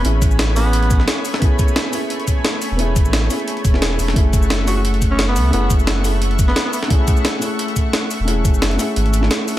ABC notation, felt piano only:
X:1
M:4/4
L:1/16
Q:"Swing 16ths" 1/4=175
K:F#m
V:1 name="Felt piano"
[B,CEG]6 [B,CEG]8- [B,CEG]2 | [B,CEG]6 [B,CEG]8- [B,CEG]2 | [B,CEG]6 [B,CEG]4- [B,CEG] [B,CEG] z4 | [A,CEG]6 [A,CEG]8- [A,CEG]2 |
[A,CEG]6 [A,CEG]8- [A,CEG]2 | [A,CEG]6 [A,CEG]8- [A,CEG]2 | [A,CEG]6 [A,CEG]4- [A,CEG] [A,CEG] z4 |]